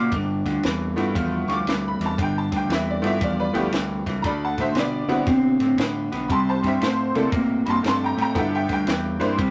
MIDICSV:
0, 0, Header, 1, 5, 480
1, 0, Start_track
1, 0, Tempo, 515021
1, 110, Time_signature, 4, 2, 24, 8
1, 8859, End_track
2, 0, Start_track
2, 0, Title_t, "Honky-tonk piano"
2, 0, Program_c, 0, 3
2, 0, Note_on_c, 0, 86, 96
2, 218, Note_off_c, 0, 86, 0
2, 895, Note_on_c, 0, 57, 73
2, 899, Note_on_c, 0, 59, 64
2, 902, Note_on_c, 0, 64, 69
2, 903, Note_on_c, 0, 65, 81
2, 1381, Note_on_c, 0, 85, 69
2, 1419, Note_off_c, 0, 85, 0
2, 1422, Note_on_c, 0, 86, 107
2, 1512, Note_off_c, 0, 57, 0
2, 1513, Note_off_c, 0, 59, 0
2, 1515, Note_off_c, 0, 64, 0
2, 1515, Note_off_c, 0, 65, 0
2, 1716, Note_off_c, 0, 86, 0
2, 1750, Note_on_c, 0, 83, 88
2, 1885, Note_off_c, 0, 83, 0
2, 1919, Note_on_c, 0, 81, 82
2, 2050, Note_off_c, 0, 81, 0
2, 2074, Note_on_c, 0, 79, 92
2, 2207, Note_off_c, 0, 79, 0
2, 2218, Note_on_c, 0, 81, 79
2, 2359, Note_off_c, 0, 81, 0
2, 2390, Note_on_c, 0, 79, 82
2, 2525, Note_off_c, 0, 79, 0
2, 2544, Note_on_c, 0, 76, 84
2, 2682, Note_off_c, 0, 76, 0
2, 2708, Note_on_c, 0, 74, 78
2, 2814, Note_on_c, 0, 57, 73
2, 2815, Note_on_c, 0, 59, 68
2, 2815, Note_on_c, 0, 64, 72
2, 2825, Note_on_c, 0, 65, 80
2, 2844, Note_off_c, 0, 74, 0
2, 2861, Note_on_c, 0, 76, 87
2, 2967, Note_off_c, 0, 57, 0
2, 2968, Note_off_c, 0, 59, 0
2, 2968, Note_off_c, 0, 64, 0
2, 2973, Note_off_c, 0, 65, 0
2, 3000, Note_off_c, 0, 76, 0
2, 3019, Note_on_c, 0, 74, 85
2, 3159, Note_off_c, 0, 74, 0
2, 3167, Note_on_c, 0, 71, 79
2, 3177, Note_on_c, 0, 74, 85
2, 3295, Note_on_c, 0, 57, 77
2, 3298, Note_on_c, 0, 59, 74
2, 3301, Note_on_c, 0, 64, 73
2, 3305, Note_on_c, 0, 67, 90
2, 3405, Note_off_c, 0, 71, 0
2, 3420, Note_off_c, 0, 74, 0
2, 3447, Note_off_c, 0, 57, 0
2, 3449, Note_off_c, 0, 59, 0
2, 3451, Note_off_c, 0, 64, 0
2, 3453, Note_off_c, 0, 67, 0
2, 3936, Note_on_c, 0, 82, 62
2, 3969, Note_off_c, 0, 82, 0
2, 3972, Note_on_c, 0, 74, 76
2, 3976, Note_on_c, 0, 83, 88
2, 4109, Note_off_c, 0, 74, 0
2, 4118, Note_off_c, 0, 83, 0
2, 4143, Note_on_c, 0, 81, 77
2, 4144, Note_on_c, 0, 78, 69
2, 4276, Note_off_c, 0, 78, 0
2, 4281, Note_off_c, 0, 81, 0
2, 4288, Note_on_c, 0, 72, 74
2, 4294, Note_on_c, 0, 76, 82
2, 4428, Note_off_c, 0, 72, 0
2, 4437, Note_off_c, 0, 76, 0
2, 4467, Note_on_c, 0, 74, 95
2, 4740, Note_on_c, 0, 59, 77
2, 4740, Note_on_c, 0, 60, 70
2, 4742, Note_on_c, 0, 64, 70
2, 4747, Note_on_c, 0, 66, 78
2, 4890, Note_off_c, 0, 59, 0
2, 4890, Note_off_c, 0, 60, 0
2, 4891, Note_off_c, 0, 64, 0
2, 4893, Note_off_c, 0, 66, 0
2, 4914, Note_off_c, 0, 74, 0
2, 5854, Note_on_c, 0, 83, 62
2, 5887, Note_off_c, 0, 83, 0
2, 5890, Note_on_c, 0, 81, 79
2, 5900, Note_on_c, 0, 84, 87
2, 6028, Note_off_c, 0, 81, 0
2, 6039, Note_off_c, 0, 84, 0
2, 6048, Note_on_c, 0, 72, 74
2, 6056, Note_on_c, 0, 81, 85
2, 6187, Note_off_c, 0, 72, 0
2, 6197, Note_off_c, 0, 81, 0
2, 6211, Note_on_c, 0, 72, 63
2, 6216, Note_on_c, 0, 76, 68
2, 6349, Note_off_c, 0, 72, 0
2, 6357, Note_off_c, 0, 76, 0
2, 6367, Note_on_c, 0, 72, 93
2, 6665, Note_on_c, 0, 62, 63
2, 6667, Note_on_c, 0, 58, 71
2, 6669, Note_on_c, 0, 64, 62
2, 6672, Note_on_c, 0, 69, 77
2, 6812, Note_off_c, 0, 62, 0
2, 6813, Note_off_c, 0, 58, 0
2, 6814, Note_off_c, 0, 64, 0
2, 6816, Note_off_c, 0, 69, 0
2, 6823, Note_off_c, 0, 72, 0
2, 7136, Note_on_c, 0, 83, 67
2, 7174, Note_off_c, 0, 83, 0
2, 7175, Note_on_c, 0, 81, 80
2, 7180, Note_on_c, 0, 84, 90
2, 7311, Note_off_c, 0, 81, 0
2, 7319, Note_off_c, 0, 84, 0
2, 7344, Note_on_c, 0, 81, 86
2, 7344, Note_on_c, 0, 84, 98
2, 7476, Note_off_c, 0, 81, 0
2, 7481, Note_off_c, 0, 84, 0
2, 7496, Note_on_c, 0, 79, 75
2, 7511, Note_on_c, 0, 82, 85
2, 7631, Note_off_c, 0, 79, 0
2, 7645, Note_off_c, 0, 82, 0
2, 7654, Note_on_c, 0, 79, 83
2, 7662, Note_on_c, 0, 82, 98
2, 7780, Note_on_c, 0, 59, 68
2, 7780, Note_on_c, 0, 64, 60
2, 7785, Note_on_c, 0, 69, 73
2, 7788, Note_on_c, 0, 65, 57
2, 7791, Note_off_c, 0, 79, 0
2, 7801, Note_off_c, 0, 82, 0
2, 7801, Note_on_c, 0, 76, 76
2, 7810, Note_on_c, 0, 79, 88
2, 7944, Note_off_c, 0, 76, 0
2, 7954, Note_off_c, 0, 79, 0
2, 7968, Note_on_c, 0, 76, 73
2, 7975, Note_on_c, 0, 79, 83
2, 8067, Note_off_c, 0, 59, 0
2, 8067, Note_off_c, 0, 64, 0
2, 8069, Note_off_c, 0, 69, 0
2, 8071, Note_off_c, 0, 65, 0
2, 8108, Note_off_c, 0, 76, 0
2, 8117, Note_off_c, 0, 79, 0
2, 8135, Note_on_c, 0, 79, 103
2, 8569, Note_on_c, 0, 62, 72
2, 8572, Note_on_c, 0, 58, 78
2, 8576, Note_on_c, 0, 64, 71
2, 8579, Note_on_c, 0, 72, 85
2, 8587, Note_off_c, 0, 79, 0
2, 8725, Note_off_c, 0, 62, 0
2, 8726, Note_off_c, 0, 58, 0
2, 8728, Note_off_c, 0, 64, 0
2, 8730, Note_off_c, 0, 72, 0
2, 8859, End_track
3, 0, Start_track
3, 0, Title_t, "Clean electric guitar"
3, 0, Program_c, 1, 27
3, 114, Note_on_c, 1, 43, 84
3, 118, Note_on_c, 1, 50, 99
3, 395, Note_off_c, 1, 43, 0
3, 397, Note_off_c, 1, 50, 0
3, 422, Note_on_c, 1, 43, 76
3, 428, Note_on_c, 1, 50, 90
3, 572, Note_off_c, 1, 43, 0
3, 575, Note_off_c, 1, 50, 0
3, 595, Note_on_c, 1, 43, 87
3, 599, Note_on_c, 1, 52, 96
3, 875, Note_off_c, 1, 43, 0
3, 878, Note_off_c, 1, 52, 0
3, 904, Note_on_c, 1, 43, 82
3, 908, Note_on_c, 1, 52, 82
3, 1053, Note_off_c, 1, 43, 0
3, 1055, Note_off_c, 1, 52, 0
3, 1067, Note_on_c, 1, 43, 76
3, 1073, Note_on_c, 1, 53, 90
3, 1352, Note_off_c, 1, 43, 0
3, 1355, Note_off_c, 1, 53, 0
3, 1387, Note_on_c, 1, 43, 70
3, 1390, Note_on_c, 1, 53, 76
3, 1534, Note_off_c, 1, 43, 0
3, 1536, Note_off_c, 1, 53, 0
3, 1560, Note_on_c, 1, 43, 85
3, 1563, Note_on_c, 1, 52, 87
3, 1838, Note_off_c, 1, 43, 0
3, 1839, Note_off_c, 1, 52, 0
3, 1871, Note_on_c, 1, 43, 69
3, 1876, Note_on_c, 1, 52, 80
3, 2016, Note_off_c, 1, 43, 0
3, 2019, Note_off_c, 1, 52, 0
3, 2037, Note_on_c, 1, 43, 79
3, 2039, Note_on_c, 1, 50, 94
3, 2316, Note_off_c, 1, 43, 0
3, 2317, Note_off_c, 1, 50, 0
3, 2345, Note_on_c, 1, 43, 77
3, 2349, Note_on_c, 1, 50, 79
3, 2493, Note_off_c, 1, 43, 0
3, 2495, Note_off_c, 1, 50, 0
3, 2512, Note_on_c, 1, 43, 79
3, 2515, Note_on_c, 1, 52, 90
3, 2794, Note_off_c, 1, 43, 0
3, 2795, Note_off_c, 1, 52, 0
3, 2829, Note_on_c, 1, 43, 71
3, 2834, Note_on_c, 1, 52, 82
3, 2975, Note_off_c, 1, 43, 0
3, 2977, Note_off_c, 1, 52, 0
3, 2989, Note_on_c, 1, 43, 81
3, 2995, Note_on_c, 1, 53, 88
3, 3272, Note_off_c, 1, 43, 0
3, 3275, Note_off_c, 1, 53, 0
3, 3303, Note_on_c, 1, 43, 79
3, 3310, Note_on_c, 1, 53, 81
3, 3452, Note_off_c, 1, 43, 0
3, 3455, Note_off_c, 1, 53, 0
3, 3469, Note_on_c, 1, 43, 78
3, 3475, Note_on_c, 1, 52, 88
3, 3752, Note_off_c, 1, 43, 0
3, 3755, Note_off_c, 1, 52, 0
3, 3787, Note_on_c, 1, 43, 81
3, 3788, Note_on_c, 1, 52, 85
3, 3934, Note_off_c, 1, 43, 0
3, 3934, Note_off_c, 1, 52, 0
3, 3951, Note_on_c, 1, 50, 83
3, 3956, Note_on_c, 1, 57, 87
3, 4233, Note_off_c, 1, 50, 0
3, 4235, Note_off_c, 1, 57, 0
3, 4267, Note_on_c, 1, 50, 78
3, 4274, Note_on_c, 1, 57, 81
3, 4413, Note_off_c, 1, 50, 0
3, 4417, Note_off_c, 1, 57, 0
3, 4431, Note_on_c, 1, 50, 85
3, 4437, Note_on_c, 1, 59, 88
3, 4713, Note_off_c, 1, 50, 0
3, 4716, Note_off_c, 1, 59, 0
3, 4745, Note_on_c, 1, 50, 77
3, 4750, Note_on_c, 1, 59, 83
3, 4893, Note_off_c, 1, 50, 0
3, 4895, Note_off_c, 1, 59, 0
3, 4914, Note_on_c, 1, 50, 80
3, 4919, Note_on_c, 1, 60, 96
3, 5194, Note_off_c, 1, 50, 0
3, 5196, Note_off_c, 1, 60, 0
3, 5226, Note_on_c, 1, 50, 73
3, 5228, Note_on_c, 1, 60, 78
3, 5373, Note_off_c, 1, 50, 0
3, 5374, Note_off_c, 1, 60, 0
3, 5383, Note_on_c, 1, 50, 80
3, 5390, Note_on_c, 1, 59, 86
3, 5669, Note_off_c, 1, 50, 0
3, 5672, Note_off_c, 1, 59, 0
3, 5702, Note_on_c, 1, 50, 74
3, 5706, Note_on_c, 1, 59, 89
3, 5851, Note_off_c, 1, 50, 0
3, 5853, Note_off_c, 1, 59, 0
3, 5863, Note_on_c, 1, 48, 83
3, 5868, Note_on_c, 1, 55, 94
3, 6148, Note_off_c, 1, 48, 0
3, 6151, Note_off_c, 1, 55, 0
3, 6176, Note_on_c, 1, 48, 78
3, 6185, Note_on_c, 1, 55, 82
3, 6328, Note_off_c, 1, 48, 0
3, 6333, Note_off_c, 1, 55, 0
3, 6343, Note_on_c, 1, 48, 82
3, 6349, Note_on_c, 1, 57, 102
3, 6628, Note_off_c, 1, 48, 0
3, 6631, Note_off_c, 1, 57, 0
3, 6659, Note_on_c, 1, 48, 71
3, 6664, Note_on_c, 1, 57, 81
3, 6806, Note_off_c, 1, 48, 0
3, 6812, Note_off_c, 1, 57, 0
3, 6817, Note_on_c, 1, 48, 89
3, 6819, Note_on_c, 1, 58, 93
3, 7106, Note_off_c, 1, 48, 0
3, 7106, Note_off_c, 1, 58, 0
3, 7132, Note_on_c, 1, 48, 75
3, 7140, Note_on_c, 1, 58, 85
3, 7283, Note_off_c, 1, 48, 0
3, 7290, Note_off_c, 1, 58, 0
3, 7295, Note_on_c, 1, 48, 84
3, 7303, Note_on_c, 1, 57, 91
3, 7584, Note_off_c, 1, 48, 0
3, 7588, Note_off_c, 1, 57, 0
3, 7610, Note_on_c, 1, 48, 80
3, 7614, Note_on_c, 1, 57, 84
3, 7765, Note_off_c, 1, 48, 0
3, 7767, Note_off_c, 1, 57, 0
3, 7775, Note_on_c, 1, 43, 86
3, 7781, Note_on_c, 1, 50, 90
3, 8065, Note_off_c, 1, 43, 0
3, 8067, Note_off_c, 1, 50, 0
3, 8094, Note_on_c, 1, 43, 78
3, 8098, Note_on_c, 1, 50, 83
3, 8247, Note_off_c, 1, 43, 0
3, 8249, Note_off_c, 1, 50, 0
3, 8258, Note_on_c, 1, 43, 94
3, 8263, Note_on_c, 1, 52, 101
3, 8546, Note_off_c, 1, 43, 0
3, 8549, Note_off_c, 1, 52, 0
3, 8569, Note_on_c, 1, 43, 79
3, 8573, Note_on_c, 1, 52, 87
3, 8724, Note_off_c, 1, 43, 0
3, 8726, Note_off_c, 1, 52, 0
3, 8735, Note_on_c, 1, 48, 85
3, 8738, Note_on_c, 1, 55, 93
3, 8859, Note_off_c, 1, 48, 0
3, 8859, Note_off_c, 1, 55, 0
3, 8859, End_track
4, 0, Start_track
4, 0, Title_t, "Fingered electric bass"
4, 0, Program_c, 2, 33
4, 106, Note_on_c, 2, 31, 94
4, 393, Note_off_c, 2, 31, 0
4, 424, Note_on_c, 2, 38, 91
4, 574, Note_off_c, 2, 38, 0
4, 586, Note_on_c, 2, 40, 86
4, 873, Note_off_c, 2, 40, 0
4, 902, Note_on_c, 2, 43, 85
4, 1053, Note_off_c, 2, 43, 0
4, 1072, Note_on_c, 2, 40, 94
4, 1356, Note_off_c, 2, 40, 0
4, 1375, Note_on_c, 2, 38, 89
4, 1529, Note_off_c, 2, 38, 0
4, 1534, Note_on_c, 2, 38, 95
4, 1827, Note_off_c, 2, 38, 0
4, 1855, Note_on_c, 2, 40, 86
4, 2009, Note_off_c, 2, 40, 0
4, 2034, Note_on_c, 2, 31, 95
4, 2317, Note_off_c, 2, 31, 0
4, 2347, Note_on_c, 2, 38, 85
4, 2492, Note_off_c, 2, 38, 0
4, 2498, Note_on_c, 2, 40, 81
4, 2788, Note_off_c, 2, 40, 0
4, 2814, Note_on_c, 2, 43, 83
4, 2968, Note_off_c, 2, 43, 0
4, 2994, Note_on_c, 2, 40, 94
4, 3277, Note_off_c, 2, 40, 0
4, 3300, Note_on_c, 2, 38, 84
4, 3451, Note_off_c, 2, 38, 0
4, 3460, Note_on_c, 2, 38, 91
4, 3749, Note_off_c, 2, 38, 0
4, 3786, Note_on_c, 2, 37, 93
4, 3934, Note_off_c, 2, 37, 0
4, 3950, Note_on_c, 2, 38, 89
4, 4235, Note_off_c, 2, 38, 0
4, 4263, Note_on_c, 2, 45, 83
4, 4413, Note_off_c, 2, 45, 0
4, 4425, Note_on_c, 2, 47, 83
4, 4712, Note_off_c, 2, 47, 0
4, 4732, Note_on_c, 2, 50, 84
4, 4887, Note_off_c, 2, 50, 0
4, 4909, Note_on_c, 2, 47, 93
4, 5194, Note_off_c, 2, 47, 0
4, 5215, Note_on_c, 2, 45, 87
4, 5368, Note_off_c, 2, 45, 0
4, 5382, Note_on_c, 2, 45, 88
4, 5670, Note_off_c, 2, 45, 0
4, 5702, Note_on_c, 2, 35, 88
4, 5852, Note_off_c, 2, 35, 0
4, 5867, Note_on_c, 2, 36, 93
4, 6153, Note_off_c, 2, 36, 0
4, 6186, Note_on_c, 2, 43, 86
4, 6334, Note_off_c, 2, 43, 0
4, 6354, Note_on_c, 2, 45, 81
4, 6636, Note_off_c, 2, 45, 0
4, 6666, Note_on_c, 2, 48, 81
4, 6814, Note_off_c, 2, 48, 0
4, 6824, Note_on_c, 2, 45, 89
4, 7111, Note_off_c, 2, 45, 0
4, 7146, Note_on_c, 2, 43, 87
4, 7294, Note_off_c, 2, 43, 0
4, 7304, Note_on_c, 2, 43, 97
4, 7591, Note_off_c, 2, 43, 0
4, 7619, Note_on_c, 2, 45, 90
4, 7770, Note_off_c, 2, 45, 0
4, 7786, Note_on_c, 2, 31, 95
4, 8072, Note_off_c, 2, 31, 0
4, 8095, Note_on_c, 2, 38, 90
4, 8248, Note_off_c, 2, 38, 0
4, 8267, Note_on_c, 2, 40, 86
4, 8553, Note_off_c, 2, 40, 0
4, 8574, Note_on_c, 2, 43, 88
4, 8728, Note_off_c, 2, 43, 0
4, 8745, Note_on_c, 2, 36, 93
4, 8859, Note_off_c, 2, 36, 0
4, 8859, End_track
5, 0, Start_track
5, 0, Title_t, "Drums"
5, 110, Note_on_c, 9, 36, 107
5, 112, Note_on_c, 9, 51, 78
5, 203, Note_off_c, 9, 36, 0
5, 205, Note_off_c, 9, 51, 0
5, 425, Note_on_c, 9, 36, 78
5, 428, Note_on_c, 9, 51, 58
5, 443, Note_on_c, 9, 38, 35
5, 518, Note_off_c, 9, 36, 0
5, 521, Note_off_c, 9, 51, 0
5, 536, Note_off_c, 9, 38, 0
5, 589, Note_on_c, 9, 51, 75
5, 603, Note_on_c, 9, 38, 112
5, 682, Note_off_c, 9, 51, 0
5, 697, Note_off_c, 9, 38, 0
5, 908, Note_on_c, 9, 51, 58
5, 923, Note_on_c, 9, 38, 34
5, 1001, Note_off_c, 9, 51, 0
5, 1016, Note_off_c, 9, 38, 0
5, 1074, Note_on_c, 9, 36, 112
5, 1078, Note_on_c, 9, 51, 86
5, 1167, Note_off_c, 9, 36, 0
5, 1172, Note_off_c, 9, 51, 0
5, 1393, Note_on_c, 9, 51, 61
5, 1408, Note_on_c, 9, 38, 34
5, 1486, Note_off_c, 9, 51, 0
5, 1501, Note_off_c, 9, 38, 0
5, 1556, Note_on_c, 9, 51, 81
5, 1571, Note_on_c, 9, 38, 110
5, 1650, Note_off_c, 9, 51, 0
5, 1665, Note_off_c, 9, 38, 0
5, 1872, Note_on_c, 9, 51, 67
5, 1886, Note_on_c, 9, 38, 34
5, 1965, Note_off_c, 9, 51, 0
5, 1980, Note_off_c, 9, 38, 0
5, 2034, Note_on_c, 9, 36, 117
5, 2039, Note_on_c, 9, 51, 85
5, 2128, Note_off_c, 9, 36, 0
5, 2132, Note_off_c, 9, 51, 0
5, 2349, Note_on_c, 9, 36, 80
5, 2350, Note_on_c, 9, 51, 66
5, 2365, Note_on_c, 9, 38, 35
5, 2443, Note_off_c, 9, 36, 0
5, 2443, Note_off_c, 9, 51, 0
5, 2458, Note_off_c, 9, 38, 0
5, 2517, Note_on_c, 9, 51, 86
5, 2532, Note_on_c, 9, 38, 107
5, 2611, Note_off_c, 9, 51, 0
5, 2626, Note_off_c, 9, 38, 0
5, 2830, Note_on_c, 9, 51, 66
5, 2845, Note_on_c, 9, 38, 34
5, 2923, Note_off_c, 9, 51, 0
5, 2938, Note_off_c, 9, 38, 0
5, 2992, Note_on_c, 9, 36, 121
5, 2992, Note_on_c, 9, 51, 90
5, 3085, Note_off_c, 9, 51, 0
5, 3086, Note_off_c, 9, 36, 0
5, 3307, Note_on_c, 9, 51, 62
5, 3322, Note_on_c, 9, 38, 33
5, 3401, Note_off_c, 9, 51, 0
5, 3416, Note_off_c, 9, 38, 0
5, 3472, Note_on_c, 9, 51, 85
5, 3487, Note_on_c, 9, 38, 110
5, 3565, Note_off_c, 9, 51, 0
5, 3580, Note_off_c, 9, 38, 0
5, 3788, Note_on_c, 9, 36, 80
5, 3790, Note_on_c, 9, 51, 63
5, 3805, Note_on_c, 9, 38, 36
5, 3881, Note_off_c, 9, 36, 0
5, 3883, Note_off_c, 9, 51, 0
5, 3898, Note_off_c, 9, 38, 0
5, 3952, Note_on_c, 9, 51, 86
5, 3953, Note_on_c, 9, 36, 110
5, 3967, Note_on_c, 9, 38, 33
5, 4046, Note_off_c, 9, 36, 0
5, 4046, Note_off_c, 9, 51, 0
5, 4061, Note_off_c, 9, 38, 0
5, 4267, Note_on_c, 9, 36, 81
5, 4268, Note_on_c, 9, 51, 63
5, 4283, Note_on_c, 9, 38, 36
5, 4360, Note_off_c, 9, 36, 0
5, 4361, Note_off_c, 9, 51, 0
5, 4376, Note_off_c, 9, 38, 0
5, 4426, Note_on_c, 9, 51, 83
5, 4441, Note_on_c, 9, 38, 107
5, 4519, Note_off_c, 9, 51, 0
5, 4534, Note_off_c, 9, 38, 0
5, 4745, Note_on_c, 9, 51, 58
5, 4760, Note_on_c, 9, 38, 34
5, 4838, Note_off_c, 9, 51, 0
5, 4853, Note_off_c, 9, 38, 0
5, 4907, Note_on_c, 9, 51, 83
5, 4910, Note_on_c, 9, 36, 121
5, 4922, Note_on_c, 9, 38, 34
5, 5000, Note_off_c, 9, 51, 0
5, 5003, Note_off_c, 9, 36, 0
5, 5015, Note_off_c, 9, 38, 0
5, 5219, Note_on_c, 9, 51, 62
5, 5234, Note_on_c, 9, 38, 35
5, 5312, Note_off_c, 9, 51, 0
5, 5327, Note_off_c, 9, 38, 0
5, 5387, Note_on_c, 9, 51, 83
5, 5402, Note_on_c, 9, 38, 111
5, 5480, Note_off_c, 9, 51, 0
5, 5495, Note_off_c, 9, 38, 0
5, 5706, Note_on_c, 9, 51, 66
5, 5721, Note_on_c, 9, 38, 37
5, 5799, Note_off_c, 9, 51, 0
5, 5814, Note_off_c, 9, 38, 0
5, 5868, Note_on_c, 9, 36, 113
5, 5871, Note_on_c, 9, 51, 84
5, 5962, Note_off_c, 9, 36, 0
5, 5964, Note_off_c, 9, 51, 0
5, 6183, Note_on_c, 9, 36, 83
5, 6187, Note_on_c, 9, 51, 66
5, 6202, Note_on_c, 9, 38, 36
5, 6277, Note_off_c, 9, 36, 0
5, 6280, Note_off_c, 9, 51, 0
5, 6295, Note_off_c, 9, 38, 0
5, 6351, Note_on_c, 9, 51, 83
5, 6366, Note_on_c, 9, 38, 107
5, 6444, Note_off_c, 9, 51, 0
5, 6459, Note_off_c, 9, 38, 0
5, 6666, Note_on_c, 9, 51, 62
5, 6681, Note_on_c, 9, 38, 35
5, 6759, Note_off_c, 9, 51, 0
5, 6774, Note_off_c, 9, 38, 0
5, 6823, Note_on_c, 9, 51, 91
5, 6826, Note_on_c, 9, 36, 121
5, 6916, Note_off_c, 9, 51, 0
5, 6919, Note_off_c, 9, 36, 0
5, 7142, Note_on_c, 9, 51, 65
5, 7157, Note_on_c, 9, 38, 36
5, 7235, Note_off_c, 9, 51, 0
5, 7250, Note_off_c, 9, 38, 0
5, 7309, Note_on_c, 9, 51, 84
5, 7324, Note_on_c, 9, 38, 111
5, 7402, Note_off_c, 9, 51, 0
5, 7417, Note_off_c, 9, 38, 0
5, 7626, Note_on_c, 9, 51, 64
5, 7641, Note_on_c, 9, 38, 38
5, 7719, Note_off_c, 9, 51, 0
5, 7734, Note_off_c, 9, 38, 0
5, 7784, Note_on_c, 9, 36, 118
5, 7787, Note_on_c, 9, 51, 85
5, 7802, Note_on_c, 9, 38, 34
5, 7878, Note_off_c, 9, 36, 0
5, 7880, Note_off_c, 9, 51, 0
5, 7895, Note_off_c, 9, 38, 0
5, 8099, Note_on_c, 9, 36, 77
5, 8100, Note_on_c, 9, 51, 68
5, 8115, Note_on_c, 9, 38, 34
5, 8192, Note_off_c, 9, 36, 0
5, 8193, Note_off_c, 9, 51, 0
5, 8208, Note_off_c, 9, 38, 0
5, 8265, Note_on_c, 9, 51, 83
5, 8280, Note_on_c, 9, 38, 110
5, 8359, Note_off_c, 9, 51, 0
5, 8373, Note_off_c, 9, 38, 0
5, 8583, Note_on_c, 9, 51, 61
5, 8597, Note_on_c, 9, 38, 34
5, 8676, Note_off_c, 9, 51, 0
5, 8691, Note_off_c, 9, 38, 0
5, 8745, Note_on_c, 9, 51, 86
5, 8746, Note_on_c, 9, 36, 113
5, 8839, Note_off_c, 9, 36, 0
5, 8839, Note_off_c, 9, 51, 0
5, 8859, End_track
0, 0, End_of_file